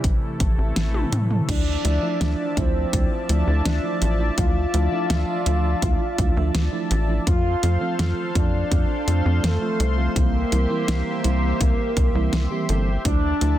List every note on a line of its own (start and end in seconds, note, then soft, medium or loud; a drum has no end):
0.00 0.18 A1 medium
0.00 1.45 C3 medium
0.00 1.46 E3 medium
0.00 kick loud
0.00 closed hi-hat medium
0.04 1.47 A3 medium
0.04 1.47 E4 medium
0.04 1.47 A4 medium
0.40 0.55 A1 medium
0.40 kick loud
0.40 closed hi-hat medium
0.58 0.73 A1 loud
0.76 1.05 A1 medium
0.76 snare loud
0.76 closed hi-hat medium
0.94 high tom medium
1.12 1.41 A2 medium
1.12 closed hi-hat medium
1.12 mid tom medium
1.31 mid tom medium
1.49 1.77 D2 loud
1.49 1.68 F3 medium
1.49 7.23 F3 medium
1.49 1.68 A3 medium
1.49 1.68 D4 medium
1.49 2.59 D4 loud
1.49 1.68 E4 medium
1.49 7.23 D5 medium
1.49 7.23 E5 medium
1.49 7.23 A5 loud
1.49 kick loud
1.49 closed hi-hat medium
1.49 crash loud
1.85 1.99 D2 loud
1.85 1.99 F3 medium
1.85 1.99 A3 medium
1.85 1.99 D4 medium
1.85 1.98 E4 loud
1.85 closed hi-hat medium
2.03 2.17 F3 loud
2.03 2.17 A3 medium
2.03 2.17 D4 medium
2.03 2.17 E4 loud
2.21 2.35 D2 medium
2.21 2.53 F3 loud
2.21 2.53 A3 medium
2.21 2.53 E4 loud
2.21 snare loud
2.21 closed hi-hat loud
2.57 2.86 D2 medium
2.57 2.89 F3 loud
2.57 2.89 A3 medium
2.57 3.51 C4 loud
2.57 2.89 D4 medium
2.57 2.89 E4 loud
2.57 kick loud
2.57 closed hi-hat medium
2.93 3.08 D2 medium
2.93 3.12 F3 medium
2.93 3.12 A3 medium
2.93 3.12 D4 medium
2.93 3.12 E4 medium
2.93 kick loud
2.93 closed hi-hat loud
3.29 3.44 D2 medium
3.29 3.45 F3 medium
3.29 3.45 A3 medium
3.29 3.45 D4 medium
3.29 3.45 E4 medium
3.29 closed hi-hat medium
3.47 3.62 D2 medium
3.47 3.79 F3 medium
3.47 3.79 A3 medium
3.47 3.79 D4 medium
3.47 3.79 E4 loud
3.65 3.80 D2 medium
3.65 4.04 D4 medium
3.65 snare loud
3.65 closed hi-hat loud
3.84 4.03 F3 loud
3.84 4.03 A3 medium
3.84 4.03 D4 medium
3.84 4.03 E4 loud
4.02 4.30 A1 loud
4.02 closed hi-hat medium
4.20 4.35 F3 medium
4.20 4.35 A3 medium
4.20 4.35 D4 medium
4.20 4.35 E4 medium
4.38 4.67 D2 loud
4.38 4.57 F3 medium
4.38 4.57 A3 medium
4.38 4.57 D4 medium
4.38 4.57 E4 medium
4.38 7.12 F4 loud
4.38 kick loud
4.38 closed hi-hat loud
4.74 4.88 D2 loud
4.74 4.88 F3 medium
4.74 4.88 A3 medium
4.74 4.88 D4 medium
4.74 4.88 E4 medium
4.74 closed hi-hat medium
4.92 5.06 F3 medium
4.92 5.06 A3 medium
4.92 5.06 D4 medium
4.92 5.06 E4 loud
5.10 5.25 D2 medium
5.10 5.42 F3 loud
5.10 5.42 A3 medium
5.10 5.42 D4 medium
5.10 5.42 E5 loud
5.10 snare loud
5.10 closed hi-hat loud
5.46 5.75 D2 medium
5.46 5.78 F3 loud
5.46 5.78 A3 medium
5.46 5.78 D4 medium
5.46 5.78 E5 loud
5.46 closed hi-hat medium
5.82 5.97 D2 medium
5.82 6.02 F3 medium
5.82 6.02 A3 medium
5.82 6.02 D4 medium
5.82 6.02 E4 medium
5.82 kick loud
5.82 closed hi-hat loud
6.18 6.33 D2 medium
6.18 6.34 F3 medium
6.18 6.34 A3 medium
6.18 6.34 D4 medium
6.18 6.34 E4 medium
6.18 kick loud
6.18 closed hi-hat medium
6.37 6.51 D2 medium
6.37 6.68 F3 loud
6.37 6.68 A3 medium
6.37 6.68 D4 medium
6.37 6.68 E5 loud
6.55 6.69 D2 medium
6.55 snare loud
6.55 closed hi-hat loud
6.73 6.92 F3 loud
6.73 6.92 A3 medium
6.73 6.92 D4 medium
6.73 6.92 E4 loud
6.91 7.20 A1 loud
6.91 closed hi-hat medium
7.09 7.24 F3 medium
7.09 7.24 A3 medium
7.09 7.24 D4 medium
7.09 7.24 E4 medium
7.27 7.56 F2 medium
7.27 7.46 F3 medium
7.27 7.46 A3 medium
7.27 7.46 C4 medium
7.27 8.21 F4 loud
7.27 10.13 A4 medium
7.27 13.01 C5 medium
7.27 10.13 F5 medium
7.27 13.01 C6 loud
7.27 kick loud
7.27 closed hi-hat loud
7.63 7.77 F2 loud
7.63 7.77 F3 medium
7.63 7.77 A3 medium
7.63 7.77 C4 medium
7.63 7.77 F4 loud
7.63 closed hi-hat medium
7.81 7.95 F3 medium
7.81 7.95 A3 medium
7.81 7.95 C4 medium
7.81 7.95 F4 loud
7.99 8.14 F2 medium
7.99 8.31 F3 loud
7.99 8.31 A3 medium
7.99 8.31 C4 medium
7.99 8.31 F4 loud
7.99 snare loud
7.99 closed hi-hat loud
8.35 8.64 F2 medium
8.35 8.67 F3 loud
8.35 8.67 A3 medium
8.35 8.67 C4 medium
8.35 9.45 D4 loud
8.35 8.67 F4 loud
8.35 kick loud
8.35 closed hi-hat medium
8.71 8.86 F2 medium
8.71 8.91 F3 medium
8.71 8.91 A3 medium
8.71 8.91 C4 medium
8.71 8.91 F4 medium
8.71 kick loud
8.71 closed hi-hat loud
9.07 9.22 F2 medium
9.07 9.23 F3 medium
9.07 9.23 A3 medium
9.07 9.23 C4 medium
9.07 9.23 F4 medium
9.07 closed hi-hat medium
9.26 9.40 F2 medium
9.26 9.58 F3 loud
9.26 9.58 A3 medium
9.26 9.58 C4 medium
9.26 9.58 F4 loud
9.44 9.58 F2 medium
9.44 10.18 A3 loud
9.44 snare loud
9.44 closed hi-hat loud
9.62 9.81 F3 medium
9.62 9.81 A3 medium
9.62 9.81 C4 medium
9.62 9.81 F4 loud
9.80 10.09 C2 loud
9.80 closed hi-hat medium
9.98 10.13 F3 medium
9.98 10.13 A3 medium
9.98 10.13 C4 medium
9.98 10.13 F4 medium
10.16 10.45 C2 loud
10.16 10.35 E3 medium
10.16 10.35 G3 medium
10.16 12.91 A#3 loud
10.16 10.35 C4 medium
10.16 10.35 E4 medium
10.16 13.02 G4 medium
10.16 13.02 E5 medium
10.16 kick loud
10.16 closed hi-hat medium
10.52 10.67 C2 medium
10.52 10.66 E3 medium
10.52 10.66 G3 medium
10.52 10.66 C4 medium
10.52 10.66 E4 loud
10.52 closed hi-hat medium
10.70 10.84 E3 medium
10.70 10.84 G3 medium
10.70 10.84 C4 medium
10.70 10.84 E4 loud
10.88 11.03 C2 medium
10.88 11.20 E3 loud
10.88 11.20 G3 medium
10.88 11.20 C4 medium
10.88 11.20 E4 loud
10.88 snare loud
10.88 closed hi-hat medium
11.24 11.53 C2 medium
11.24 11.56 E3 loud
11.24 11.56 G3 medium
11.24 11.56 C4 medium
11.24 11.56 E4 loud
11.24 closed hi-hat medium
11.61 11.75 C2 medium
11.61 11.80 E3 medium
11.61 11.80 G3 medium
11.61 11.80 C4 medium
11.61 11.80 E4 medium
11.61 kick loud
11.61 closed hi-hat medium
11.97 12.11 C2 medium
11.97 kick loud
11.97 closed hi-hat medium
12.15 12.29 C2 medium
12.15 12.47 E3 medium
12.15 12.47 G3 medium
12.15 12.47 C4 medium
12.15 12.47 E4 loud
12.33 12.47 C2 medium
12.33 snare loud
12.33 closed hi-hat medium
12.51 12.66 E3 loud
12.51 12.66 G3 medium
12.51 12.66 C4 medium
12.51 12.66 G4 loud
12.69 12.98 G1 medium
12.69 12.88 E3 medium
12.69 12.88 G3 medium
12.69 12.88 C4 medium
12.69 12.88 A4 loud
12.69 closed hi-hat medium
13.05 13.34 D2 loud
13.05 13.59 F3 medium
13.05 13.24 F3 medium
13.05 13.24 A3 medium
13.05 13.59 D4 loud
13.05 13.24 D4 medium
13.05 13.24 E4 medium
13.05 13.59 D5 medium
13.05 13.59 E5 medium
13.05 13.59 A5 medium
13.05 kick loud
13.05 closed hi-hat medium
13.41 13.56 D2 medium
13.41 13.55 F3 medium
13.41 13.55 A3 medium
13.41 13.55 D4 medium
13.41 13.55 E4 loud
13.41 closed hi-hat medium